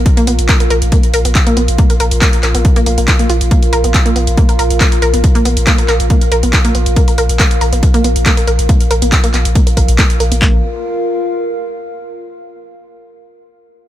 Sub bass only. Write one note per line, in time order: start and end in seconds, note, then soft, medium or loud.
0.27 0.38 A#1 medium
0.39 0.49 A#1 medium
0.70 0.81 A#1 loud
0.82 0.92 A#1 medium
1.14 1.24 A#1 medium
1.25 1.35 A#1 medium
1.57 1.68 A#1 loud
1.68 1.78 A#1 medium
2.00 2.11 A#1 loud
2.11 2.21 A#1 medium
2.43 2.54 A#1 loud
2.54 2.64 A#1 medium
2.86 2.97 A#1 loud
2.98 3.08 A#1 medium
3.30 3.40 A#1 loud
3.41 3.51 A#1 medium
3.73 3.83 A#1 loud
3.84 3.94 A#1 medium
4.16 4.27 A#1 loud
4.27 4.37 A#1 medium
4.59 4.70 A#1 loud
4.70 4.80 A#1 medium
5.02 5.13 A#1 loud
5.14 5.24 A#1 medium
5.45 5.56 A#1 loud
5.57 5.67 A#1 medium
5.89 5.99 A#1 loud
6.00 6.10 A#1 medium
6.32 6.42 A#1 loud
6.43 6.53 A#1 medium
6.75 6.86 A#1 loud
6.86 6.96 A#1 medium
7.18 7.29 A#1 loud
7.29 7.39 A#1 medium
7.61 7.72 A#1 medium
7.73 7.83 A#1 medium
8.04 8.15 A#1 loud
8.16 8.26 A#1 medium
8.47 8.58 A#1 loud
8.59 8.69 A#1 medium
8.91 9.01 A#1 medium
9.02 9.12 A#1 medium
9.34 9.45 A#1 loud
9.45 9.55 A#1 medium
9.77 9.88 A#1 loud
9.88 9.98 A#1 medium
10.20 10.31 A#1 loud
10.32 10.41 A#1 medium
10.42 10.62 A#1 loud